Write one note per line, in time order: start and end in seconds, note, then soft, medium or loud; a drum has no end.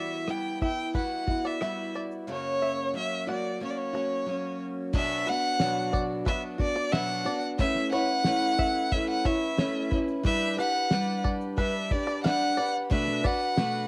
0.00 0.28 E3 medium
0.00 0.25 G3 medium
0.00 0.27 B3 medium
0.00 0.28 E4 medium
0.00 0.30 F#4 medium
0.00 0.11 D5 medium
0.00 0.32 E5 medium
0.27 0.61 G3 soft
0.27 0.61 B3 medium
0.27 0.60 E4 medium
0.27 0.63 G5 medium
0.27 cross-stick loud
0.27 shaker medium
0.61 0.94 B3 soft
0.61 0.95 E4 soft
0.61 0.93 E5 medium
0.61 0.93 G5 medium
0.61 kick medium
0.61 shaker soft
0.94 1.28 G3 soft
0.94 1.28 B3 medium
0.94 1.27 E4 medium
0.94 1.25 F#4 medium
0.94 1.11 B4 medium
0.94 1.48 F#5 medium
0.94 kick medium
0.94 shaker medium
1.27 1.60 B3 soft
1.27 1.62 E4 soft
1.27 1.61 F#4 soft
1.27 kick medium
1.27 shaker soft
1.45 1.61 D5 medium
1.45 1.95 E5 medium
1.61 2.27 G3 medium
1.61 2.28 B3 medium
1.61 2.28 E4 medium
1.61 2.29 F#4 medium
1.61 1.77 E5 medium
1.61 cross-stick medium
1.61 shaker medium
1.94 2.11 D5 medium
1.94 shaker soft
2.11 shaker soft
2.27 2.94 F#2 medium
2.27 2.94 C#3 medium
2.27 2.93 F#3 medium
2.27 2.94 A#3 medium
2.27 2.95 C#4 medium
2.27 2.96 F#4 medium
2.31 2.92 C#5 medium
2.62 2.77 E5 medium
2.94 3.27 F#3 medium
2.94 3.28 A#3 medium
2.94 3.28 C#4 medium
2.94 3.26 F#4 medium
2.94 3.27 E5 medium
3.27 3.59 F#3 soft
3.27 3.60 A#3 soft
3.27 3.61 F#4 soft
3.27 3.60 D5 medium
3.27 3.60 F#5 medium
3.60 3.94 F#3 medium
3.60 3.94 A#3 medium
3.60 3.93 C#4 medium
3.60 3.92 F#4 medium
3.60 3.72 C#5 medium
3.70 3.78 D5 medium
3.77 4.62 C#5 medium
3.93 4.25 F#3 soft
3.93 4.27 A#3 soft
3.93 4.27 C#4 soft
3.93 4.27 F#4 soft
3.93 4.41 C#5 medium
4.26 4.93 F#3 medium
4.26 4.94 A#3 medium
4.26 4.94 C#4 medium
4.26 4.95 F#4 medium
4.93 5.27 B2 medium
4.93 5.27 F#3 medium
4.93 5.27 B3 medium
4.93 5.27 D4 medium
4.93 5.25 F#4 medium
4.93 5.30 E5 loud
4.93 kick loud
4.93 crash medium
5.26 5.59 B3 soft
5.26 5.59 D4 soft
5.26 5.60 F#4 medium
5.26 5.43 B4 medium
5.26 5.94 F#5 loud
5.26 shaker medium
5.44 shaker soft
5.59 6.26 B2 medium
5.59 6.24 F#3 medium
5.59 6.26 B3 medium
5.59 6.26 D4 medium
5.59 6.27 F#4 medium
5.59 snare loud
5.59 shaker medium
5.93 6.25 D5 medium
5.93 kick medium
5.93 shaker soft
6.25 6.59 F#3 medium
6.25 6.60 B3 medium
6.25 6.59 D4 medium
6.25 6.57 F#4 medium
6.25 6.42 B4 medium
6.25 6.42 E5 medium
6.25 kick medium
6.25 shaker medium
6.58 6.92 B3 soft
6.58 6.92 D4 soft
6.58 6.92 F#4 medium
6.58 6.94 D5 medium
6.58 kick medium
6.58 shaker soft
6.76 6.92 D5 medium
6.76 shaker soft
6.92 7.26 B2 medium
6.92 7.26 F#3 medium
6.92 7.26 B3 medium
6.92 7.26 D4 medium
6.92 7.24 F#4 medium
6.92 7.09 E5 medium
6.92 7.42 F#5 loud
6.92 snare loud
6.92 shaker medium
7.25 7.59 B3 soft
7.25 7.60 D4 soft
7.25 7.59 F#4 medium
7.25 7.42 D5 medium
7.25 shaker soft
7.59 7.92 A3 medium
7.59 7.93 C#4 medium
7.59 7.93 E4 medium
7.59 7.91 B4 medium
7.59 7.90 E5 loud
7.59 kick loud
7.59 shaker medium
7.75 snare soft
7.92 8.25 C#4 soft
7.92 8.25 E4 soft
7.92 8.26 B4 medium
7.92 8.08 C#5 medium
7.92 8.93 F#5 loud
7.92 shaker medium
8.09 shaker soft
8.24 8.90 A3 medium
8.24 8.92 C#4 medium
8.24 8.92 E4 medium
8.24 8.94 B4 medium
8.24 snare loud
8.24 shaker medium
8.59 8.90 E5 medium
8.59 kick medium
8.59 shaker soft
8.91 9.25 A3 medium
8.91 9.26 C#4 medium
8.91 9.24 E4 medium
8.91 9.23 B4 medium
8.91 9.08 E5 medium
8.91 kick medium
8.91 shaker medium
9.10 9.27 F#5 medium
9.24 9.57 C#4 soft
9.24 9.58 E4 medium
9.24 9.58 B4 medium
9.24 9.72 C#5 medium
9.24 9.92 E5 medium
9.24 kick medium
9.24 shaker soft
9.43 shaker soft
9.57 9.91 A3 medium
9.57 9.92 C#4 medium
9.57 9.91 E4 medium
9.57 9.89 B4 medium
9.57 snare loud
9.57 shaker medium
9.91 10.24 C#4 soft
9.91 10.25 E4 medium
9.91 10.25 B4 medium
9.91 kick medium
9.91 shaker soft
10.08 shaker soft
10.23 10.57 G3 medium
10.23 10.58 D4 medium
10.23 10.57 G4 medium
10.23 10.56 B4 medium
10.23 10.56 E5 loud
10.23 kick loud
10.23 shaker medium
10.57 10.90 D4 soft
10.57 10.91 G4 medium
10.57 10.91 B4 medium
10.57 10.74 B4 medium
10.57 11.21 F#5 loud
10.57 shaker medium
10.75 shaker soft
10.91 11.56 G3 medium
10.91 11.58 D4 medium
10.91 11.58 G4 medium
10.91 11.60 B4 medium
10.91 snare loud
10.91 shaker medium
11.24 11.56 D5 medium
11.24 kick medium
11.24 shaker soft
11.41 shaker medium
11.57 11.91 G3 medium
11.57 11.91 D4 medium
11.57 11.92 G4 medium
11.57 11.74 B4 medium
11.57 11.90 B4 medium
11.57 11.93 E5 medium
11.57 kick medium
11.57 shaker medium
11.91 12.23 D4 soft
11.91 12.24 G4 medium
11.91 12.25 B4 medium
11.91 12.24 D5 medium
11.91 kick medium
11.91 shaker soft
12.07 12.24 D5 medium
12.07 shaker soft
12.24 12.58 G3 medium
12.24 12.58 D4 medium
12.24 12.58 G4 medium
12.24 12.56 B4 medium
12.24 12.40 E5 medium
12.24 12.71 F#5 loud
12.24 snare loud
12.24 shaker medium
12.57 12.90 D4 soft
12.57 12.91 G4 medium
12.57 12.91 B4 medium
12.57 12.73 D5 medium
12.57 shaker soft
12.90 13.24 B2 medium
12.90 13.24 A3 medium
12.90 13.24 D4 medium
12.90 13.24 F#4 medium
12.90 13.22 B4 medium
12.90 13.28 E5 loud
12.90 kick loud
12.90 shaker medium
13.08 snare soft
13.23 13.56 D4 soft
13.23 13.57 F#4 soft
13.23 13.57 B4 medium
13.23 13.40 D5 medium
13.23 13.88 F#5 loud
13.23 kick medium
13.23 shaker medium
13.42 shaker soft
13.56 13.88 B2 medium
13.56 13.88 A3 medium
13.56 13.88 D4 medium
13.56 13.88 F#4 medium
13.56 13.88 B4 medium
13.56 snare loud
13.56 shaker medium